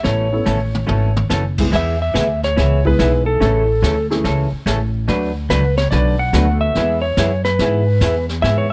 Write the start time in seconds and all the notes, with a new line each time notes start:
0.03 A1 B2 E3 A3 C#4 A4 C#5, brush sweep, snare
0.32 B3 C#4 E4 A4
0.46 A1 B2 E3 A3 C#4 A4, hi-hat pedal, mid tom
0.75 mid tom
0.87 G#1 B2 E3 A3 C#4 A4, mid tom
1.16 mid tom
1.30 F#1 B2 E3 A3 C#4 A4, snare, hi-hat pedal
1.58 G#3 B3 E4 G#4, kick, crash
1.71 E2 E3 B3 E4 G#4, brush sweep, snare
1.76 E5
2.02 E5
2.14 D2 E3 B3 E4 G#4, snare, hi-hat pedal
2.43 C#5, snare
2.57 C#2 E3 B3 E4 G#4, brush sweep, snare
2.85 E3 G#3 B3 E4 G#4 B4, kick
2.99 B1 E3 B3 E4 G#4, snare, hi-hat pedal
3.26 A4
3.40 A1 C#3 E3 A3 C#4 E4 A4, brush sweep, snare
3.82 D2 C#3 E3 A3 C#4 A4, snare, hi-hat pedal
4.10 E3 A3 C#4 E4 G#4, snare
4.24 C#2 C#3 E3 A3 C#4 A4, brush sweep, snare
4.52 muted upright bass stroke
4.66 A1 C#3 E3 A3 C#4 A4, snare, hi-hat pedal
5.08 D2 D3 F#3 A3 D4 F#4 B4, brush sweep, snare
5.50 C#2 D3 F#3 A3 D4 F#4 B4, snare, hi-hat pedal
5.77 C#5, snare
5.91 B1 D3 F#3 A3 D4 F#4 B4 D5, brush sweep, snare
6.19 F#5
6.33 D2 D3 F#3 A3 B3 D4 F#4 A4 B4, snare, hi-hat pedal
6.61 E5
6.75 E2 E3 G#3 B3 E4 G#4 B4, brush sweep, snare
7.02 C#5
7.17 F#2 E3 B3 E4 G#4, snare, hi-hat pedal
7.45 B4, snare
7.59 G#2 E3 B3 E4 G#4, brush sweep, snare
8.01 E2 E3 B3 E4 G#4, snare, hi-hat pedal
8.29 snare
8.42 G#2 E3 B3 E4 G#4 E5, brush sweep, snare
8.58 C#5